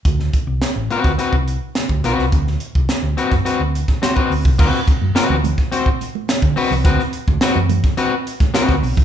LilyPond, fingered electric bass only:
\new Staff \with { instrumentName = "Fingered electric bass" } { \clef bass \time 4/4 \key d \mixolydian \tempo 4 = 106 d,8 r16 c,16 r16 a,,16 r16 d,16 r16 c,8 r8 d,16 b,,16 c,16 | d,8 r16 c,16 r16 d,16 r16 fis,16 r16 d,8 r8. d,16 c,16 | d,16 r8 fis,16 r16 d,8 r4. d16 r16 c,16 | d,16 r8 d,16 r16 fis,8 r4. d,16 b,,16 c,16 | }